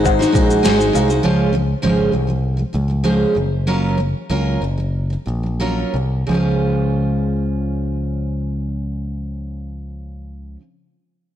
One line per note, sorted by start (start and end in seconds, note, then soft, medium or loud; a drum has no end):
0.00 0.24 G#1 loud
0.00 0.19 G#3 medium
0.00 0.04 D#4 medium
0.00 0.20 D#4 medium
0.00 0.77 D#4 medium
0.00 0.19 F#4 medium
0.00 0.04 G#4 medium
0.00 0.05 C5 medium
0.00 0.18 C5 medium
0.00 0.06 F#5 loud
0.04 0.77 G#4 medium
0.04 0.77 C5 medium
0.04 0.78 F#5 medium
0.04 kick medium
0.04 shaker medium
0.19 0.32 D#4 medium
0.19 0.33 F#4 medium
0.19 0.34 C5 medium
0.19 snare soft
0.19 shaker medium
0.32 0.59 A#1 loud
0.32 0.62 G#3 medium
0.32 0.62 D#4 medium
0.32 0.63 F#4 medium
0.32 0.63 C5 medium
0.32 kick loud
0.32 shaker medium
0.50 shaker medium
0.63 0.89 G#1 medium
0.63 0.78 G#3 medium
0.63 0.78 D#4 medium
0.63 0.78 F#4 loud
0.63 0.76 C5 medium
0.63 0.92 G#5 medium
0.63 snare loud
0.63 shaker medium
0.77 0.93 D#4 soft
0.77 0.94 F#4 medium
0.77 0.93 C5 medium
0.77 shaker medium
0.93 1.19 C2 medium
0.93 1.08 G#3 medium
0.93 1.09 D#4 medium
0.93 1.08 F#4 medium
0.93 1.07 C5 medium
0.93 1.22 F5 medium
0.93 shaker medium
1.08 1.23 D#4 soft
1.08 1.24 F#4 medium
1.08 1.23 C5 medium
1.08 shaker soft
1.23 1.73 C#2 medium
1.23 1.51 C#3 medium
1.23 1.52 F3 medium
1.23 1.53 G#3 medium
1.23 1.53 C#4 medium
1.23 1.54 F4 medium
1.23 1.54 C5 medium
1.53 1.77 C#3 medium
1.53 1.77 F3 medium
1.53 1.78 G#3 medium
1.82 2.08 G#1 medium
1.82 2.11 C#3 medium
1.82 2.12 F3 medium
1.82 2.13 G#3 medium
1.82 2.13 C#4 medium
1.82 2.13 F4 medium
1.82 2.13 C5 medium
2.12 2.63 C2 medium
2.12 2.26 C#3 medium
2.12 2.27 F3 medium
2.27 2.52 C#3 soft
2.27 2.52 F3 soft
2.27 2.53 G#3 medium
2.57 2.72 C#3 soft
2.57 2.73 F3 soft
2.57 2.74 G#3 soft
2.73 3.24 C#2 medium
2.73 2.87 C#3 medium
2.73 2.89 F3 medium
2.73 2.90 G#3 medium
2.88 3.02 C#3 soft
2.88 3.02 F3 soft
2.88 3.03 G#3 soft
3.03 3.35 C#3 medium
3.03 3.34 F3 medium
3.03 3.35 G#3 medium
3.03 3.35 C#4 medium
3.03 3.35 F4 medium
3.03 3.35 C5 medium
3.34 4.13 F#1 medium
3.34 3.59 F#3 medium
3.34 3.61 A#3 medium
3.67 3.96 F#3 medium
3.67 3.98 A#3 medium
3.67 3.98 C#4 medium
3.67 3.98 F4 medium
3.67 3.99 A#4 medium
3.98 4.23 F#3 medium
3.98 4.24 A#3 medium
4.29 4.56 C#2 medium
4.29 4.61 F#3 medium
4.29 4.62 A#3 medium
4.29 4.62 C#4 medium
4.29 4.62 F4 medium
4.29 4.62 A#4 medium
4.61 5.15 F#1 medium
4.61 4.76 F#3 medium
4.61 4.79 A#3 medium
4.78 5.04 F#3 soft
4.78 5.05 A#3 soft
5.10 5.24 F#3 soft
5.10 5.27 A#3 soft
5.26 5.83 A#1 medium
5.26 5.42 F#3 medium
5.26 5.44 A#3 medium
5.43 5.58 F#3 soft
5.43 5.59 A#3 soft
5.60 5.92 F#3 medium
5.60 5.95 A#3 medium
5.60 5.95 C#4 medium
5.60 5.95 F4 medium
5.60 5.95 A#4 medium
5.94 6.23 C2 medium
5.94 6.22 F#3 medium
5.94 6.23 A#3 medium
6.27 10.56 C#2 medium
6.27 10.59 C#3 medium
6.27 10.60 F3 medium
6.31 10.61 G#3 medium
6.31 10.62 C#4 medium
6.31 10.62 F4 medium
6.36 10.63 C5 medium